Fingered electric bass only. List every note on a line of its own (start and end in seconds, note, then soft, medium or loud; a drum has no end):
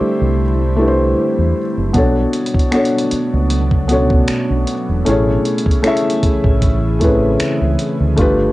0.00 muted fingered electric bass stroke soft
0.21 1.13 C2 medium
1.17 muted fingered electric bass stroke soft
1.38 1.52 E2 medium
1.77 1.91 F#1 medium
1.95 2.25 B1 loud
3.12 muted fingered electric bass stroke soft
3.33 4.25 C#2 medium
4.29 muted fingered electric bass stroke soft
4.50 4.64 B1 medium
4.89 5.02 E1 medium
5.07 5.37 A1 loud
6.23 muted fingered electric bass stroke soft
6.44 7.36 A1 medium
7.41 muted fingered electric bass stroke soft
7.61 7.75 C#2 medium
8.00 8.14 D2 medium
8.18 8.48 G1 loud